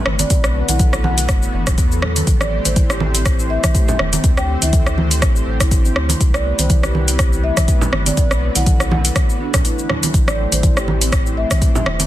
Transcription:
Already playing: E3 C4 G4 B4
0.06 G1 A3, cross-stick, high conga
0.19 C4 D5, closed hi-hat, high conga, cabasa
0.30 B1 D3 A3 B3 F#4, kick, closed hi-hat, high conga, cabasa
0.44 A3, cross-stick, cabasa
0.69 B1 E4 F#5, closed hi-hat, high conga, cabasa
0.79 A4, kick, closed hi-hat, mid tom, cabasa
0.93 cross-stick, cabasa
1.04 A3 F#5, mid tom, high conga
1.18 closed hi-hat, cabasa
1.29 F#1, kick, cross-stick, closed hi-hat, cabasa
1.42 B3, cabasa
1.53 F#1 E3
1.67 kick, cross-stick, closed hi-hat, low conga, cabasa
1.78 E2 B3, kick, closed hi-hat, cabasa
1.91 A4, cabasa
2.02 A4, cross-stick, low conga
2.16 F#3, closed hi-hat, high conga, cabasa
2.27 A1 E3 C4 G4 C5, kick, closed hi-hat, high conga, cabasa
2.41 D5, cross-stick, cabasa
2.52 A3
2.65 A1 C5, closed hi-hat, high conga, cabasa
2.76 E4, kick, closed hi-hat, mid tom, cabasa
2.90 G4, cross-stick, cabasa
3.00 high conga
3.15 C4, closed hi-hat, cabasa
3.26 kick, cross-stick, closed hi-hat, cabasa
3.39 E4, cabasa
3.50 A3 E5
3.64 kick, cross-stick, closed hi-hat, mid tom, cabasa
3.75 A3, kick, closed hi-hat, cabasa
3.88 E5, low conga, cabasa
3.99 E1 A3, cross-stick, high conga
4.13 C4, closed hi-hat, high conga, cabasa
4.24 D2 D3 C5, kick, closed hi-hat, high conga, cabasa
4.37 A3 G5, cross-stick, cabasa
4.62 D2 E4 E5, closed hi-hat, high conga, cabasa
4.73 A4, kick, closed hi-hat, mid tom, cabasa
4.87 cross-stick, cabasa
4.98 A3, mid tom, high conga
5.11 closed hi-hat, cabasa
5.22 A1 A3, kick, cross-stick, closed hi-hat, cabasa
5.36 C4, cabasa
5.47 A1
5.60 E4, kick, cross-stick, closed hi-hat, cabasa
5.71 kick, closed hi-hat, cabasa
5.85 C4, cabasa
5.96 D2 A3, cross-stick
6.09 closed hi-hat, high conga, cabasa
6.20 C2 E3 A3 B3 B4, kick, closed hi-hat, high conga, cabasa
6.34 D5, cross-stick, cabasa
6.45 A3
6.59 C2 C5, closed hi-hat, high conga, cabasa
6.70 E4, kick, closed hi-hat, mid tom, cabasa
6.83 G4, cross-stick, cabasa
6.95 high conga
7.08 C4, closed hi-hat, cabasa
7.19 kick, cross-stick, closed hi-hat, cabasa
7.33 E4, cabasa
7.44 A3 E5
7.57 kick, cross-stick, closed hi-hat, mid tom, cabasa
7.68 A3, kick, closed hi-hat, cabasa
7.81 low conga, cabasa
7.93 G1 A3, cross-stick, high conga
8.06 C4 D5, closed hi-hat, high conga, cabasa
8.17 B1 D3 A3 F#4, kick, closed hi-hat, high conga, cabasa
8.31 A3, cross-stick, cabasa
8.55 B1 E4 F#5, closed hi-hat, high conga, cabasa
8.66 A4, kick, closed hi-hat, mid tom, cabasa
8.80 cross-stick, cabasa
8.91 A3 F#5, mid tom, high conga, low conga
9.05 closed hi-hat, cabasa
9.16 A3, kick, cross-stick, closed hi-hat, high conga, cabasa
9.29 B3, cabasa
9.40 D4
9.54 D2, kick, cross-stick, closed hi-hat, low conga, cabasa
9.65 E4, closed hi-hat, cabasa
9.79 E3, cabasa
9.90 cross-stick, high conga, low conga
10.03 F#3, closed hi-hat, high conga, cabasa
10.14 A1 E3 A3 C4 G4 C5, kick, closed hi-hat, high conga, cabasa
10.28 D5, cross-stick, cabasa
10.39 A3
10.52 A1 C5, closed hi-hat, high conga, cabasa
10.63 E4, kick, closed hi-hat, mid tom, cabasa
10.77 G4, cross-stick, cabasa
10.88 high conga
11.01 C4, closed hi-hat, cabasa
11.12 kick, cross-stick, closed hi-hat, cabasa
11.26 E4, cabasa
11.37 A3 E5
11.51 kick, cross-stick, closed hi-hat, mid tom, cabasa
11.62 A3, kick, closed hi-hat, cabasa
11.75 E5, low conga, cabasa
11.86 E1 A3, cross-stick, high conga
11.99 C4, closed hi-hat, high conga, cabasa

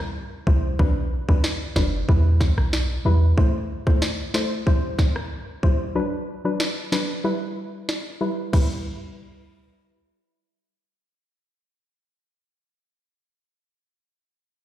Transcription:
Already playing: G3 E4 C5
0.00 cross-stick
0.47 C2 G3 E4 C5, kick
0.79 B1 F#3 D4 B4, kick
1.29 B1 F#3 D4 B4, kick
1.44 snare
1.76 F#1 F#3 D4 B4, kick, snare
2.08 E2 G3 E4 B4, kick
2.41 kick, snare
2.58 B1, cross-stick
2.73 snare
3.05 E2 G3 E4 B4
3.38 A3 E4 C5, kick
3.87 A3 E4 C5, kick
4.02 snare
4.34 A3 E4 C5, snare
4.66 G3 E4 C5, kick
4.99 kick, snare
5.16 cross-stick
5.63 G3 E4 C5, kick
5.95 F#3 D4 B4
6.45 F#3 D4 B4
6.60 snare
6.92 F#3 D4 B4, snare
7.24 G3 E4 B4
7.89 snare
8.21 G3 E4 B4
8.53 G3 E4 B4, kick, crash

